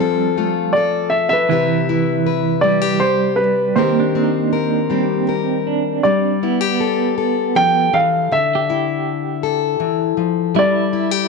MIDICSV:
0, 0, Header, 1, 4, 480
1, 0, Start_track
1, 0, Tempo, 754717
1, 952, Time_signature, 3, 2, 24, 8
1, 7174, End_track
2, 0, Start_track
2, 0, Title_t, "Grand piano"
2, 0, Program_c, 0, 0
2, 0, Note_on_c, 0, 69, 51
2, 0, Note_on_c, 0, 77, 67
2, 458, Note_off_c, 0, 69, 0
2, 463, Note_on_c, 0, 74, 64
2, 500, Note_off_c, 0, 77, 0
2, 698, Note_on_c, 0, 76, 60
2, 714, Note_off_c, 0, 74, 0
2, 812, Note_off_c, 0, 76, 0
2, 822, Note_on_c, 0, 76, 74
2, 846, Note_on_c, 0, 71, 46
2, 1650, Note_off_c, 0, 71, 0
2, 1662, Note_on_c, 0, 74, 63
2, 1689, Note_off_c, 0, 76, 0
2, 1906, Note_on_c, 0, 72, 60
2, 1912, Note_off_c, 0, 74, 0
2, 2137, Note_on_c, 0, 71, 54
2, 2154, Note_off_c, 0, 72, 0
2, 2388, Note_on_c, 0, 72, 51
2, 2389, Note_off_c, 0, 71, 0
2, 2405, Note_on_c, 0, 67, 41
2, 3329, Note_off_c, 0, 72, 0
2, 3337, Note_off_c, 0, 67, 0
2, 3838, Note_on_c, 0, 74, 58
2, 4810, Note_on_c, 0, 79, 77
2, 4835, Note_off_c, 0, 74, 0
2, 5049, Note_on_c, 0, 77, 70
2, 5056, Note_off_c, 0, 79, 0
2, 5294, Note_on_c, 0, 76, 65
2, 5295, Note_off_c, 0, 77, 0
2, 5982, Note_off_c, 0, 76, 0
2, 6734, Note_on_c, 0, 74, 65
2, 7174, Note_off_c, 0, 74, 0
2, 7174, End_track
3, 0, Start_track
3, 0, Title_t, "Steel-string acoustic guitar"
3, 0, Program_c, 1, 25
3, 0, Note_on_c, 1, 53, 53
3, 0, Note_on_c, 1, 60, 45
3, 0, Note_on_c, 1, 65, 43
3, 3, Note_on_c, 1, 69, 51
3, 233, Note_off_c, 1, 65, 0
3, 238, Note_on_c, 1, 57, 45
3, 241, Note_on_c, 1, 65, 40
3, 476, Note_off_c, 1, 69, 0
3, 487, Note_on_c, 1, 69, 49
3, 920, Note_off_c, 1, 53, 0
3, 924, Note_off_c, 1, 57, 0
3, 924, Note_off_c, 1, 65, 0
3, 958, Note_off_c, 1, 69, 0
3, 958, Note_on_c, 1, 48, 56
3, 959, Note_off_c, 1, 60, 0
3, 961, Note_on_c, 1, 64, 43
3, 964, Note_on_c, 1, 67, 44
3, 970, Note_on_c, 1, 71, 50
3, 1196, Note_off_c, 1, 64, 0
3, 1204, Note_on_c, 1, 64, 45
3, 1433, Note_off_c, 1, 71, 0
3, 1440, Note_on_c, 1, 71, 52
3, 1666, Note_off_c, 1, 64, 0
3, 1673, Note_off_c, 1, 67, 0
3, 1673, Note_on_c, 1, 55, 46
3, 1675, Note_on_c, 1, 64, 45
3, 1791, Note_off_c, 1, 64, 0
3, 1791, Note_on_c, 1, 67, 37
3, 1913, Note_off_c, 1, 71, 0
3, 2361, Note_off_c, 1, 48, 0
3, 2388, Note_off_c, 1, 67, 0
3, 2393, Note_on_c, 1, 51, 53
3, 2398, Note_on_c, 1, 60, 42
3, 2403, Note_on_c, 1, 67, 44
3, 2407, Note_on_c, 1, 70, 46
3, 2632, Note_off_c, 1, 60, 0
3, 2641, Note_on_c, 1, 60, 41
3, 2872, Note_off_c, 1, 70, 0
3, 2879, Note_on_c, 1, 70, 53
3, 3107, Note_off_c, 1, 55, 0
3, 3113, Note_off_c, 1, 67, 0
3, 3115, Note_on_c, 1, 55, 42
3, 3120, Note_on_c, 1, 67, 41
3, 3355, Note_off_c, 1, 70, 0
3, 3362, Note_on_c, 1, 70, 47
3, 3815, Note_off_c, 1, 51, 0
3, 3816, Note_off_c, 1, 70, 0
3, 3817, Note_off_c, 1, 67, 0
3, 3838, Note_off_c, 1, 55, 0
3, 3845, Note_on_c, 1, 55, 54
3, 3848, Note_off_c, 1, 60, 0
3, 4089, Note_on_c, 1, 64, 43
3, 4202, Note_off_c, 1, 64, 0
3, 4202, Note_on_c, 1, 67, 36
3, 4327, Note_on_c, 1, 69, 52
3, 4562, Note_off_c, 1, 69, 0
3, 4564, Note_on_c, 1, 69, 46
3, 4804, Note_on_c, 1, 53, 49
3, 5042, Note_off_c, 1, 53, 0
3, 5045, Note_on_c, 1, 52, 51
3, 5285, Note_off_c, 1, 52, 0
3, 5286, Note_off_c, 1, 67, 0
3, 5289, Note_off_c, 1, 55, 0
3, 5289, Note_on_c, 1, 50, 59
3, 5532, Note_on_c, 1, 64, 44
3, 5997, Note_off_c, 1, 69, 0
3, 5999, Note_on_c, 1, 69, 54
3, 6229, Note_off_c, 1, 50, 0
3, 6232, Note_on_c, 1, 52, 54
3, 6467, Note_off_c, 1, 52, 0
3, 6469, Note_on_c, 1, 53, 53
3, 6694, Note_off_c, 1, 64, 0
3, 6709, Note_on_c, 1, 55, 60
3, 6714, Note_off_c, 1, 53, 0
3, 6952, Note_on_c, 1, 64, 49
3, 7068, Note_off_c, 1, 64, 0
3, 7068, Note_on_c, 1, 67, 40
3, 7174, Note_off_c, 1, 55, 0
3, 7174, Note_off_c, 1, 67, 0
3, 7174, Note_off_c, 1, 69, 0
3, 7174, End_track
4, 0, Start_track
4, 0, Title_t, "Clean electric guitar"
4, 0, Program_c, 2, 27
4, 0, Note_on_c, 2, 55, 36
4, 0, Note_on_c, 2, 60, 51
4, 234, Note_off_c, 2, 60, 0
4, 471, Note_off_c, 2, 55, 0
4, 952, Note_on_c, 2, 52, 57
4, 1673, Note_on_c, 2, 55, 39
4, 1906, Note_off_c, 2, 52, 0
4, 2391, Note_on_c, 2, 58, 41
4, 2542, Note_on_c, 2, 62, 40
4, 2603, Note_off_c, 2, 55, 0
4, 2692, Note_on_c, 2, 63, 37
4, 3117, Note_on_c, 2, 60, 54
4, 3354, Note_off_c, 2, 58, 0
4, 3492, Note_off_c, 2, 62, 0
4, 3603, Note_off_c, 2, 63, 0
4, 3605, Note_on_c, 2, 62, 47
4, 4061, Note_off_c, 2, 60, 0
4, 4061, Note_off_c, 2, 62, 0
4, 4089, Note_on_c, 2, 59, 48
4, 5048, Note_off_c, 2, 59, 0
4, 5439, Note_on_c, 2, 67, 42
4, 6376, Note_off_c, 2, 67, 0
4, 6718, Note_on_c, 2, 64, 55
4, 7174, Note_off_c, 2, 64, 0
4, 7174, End_track
0, 0, End_of_file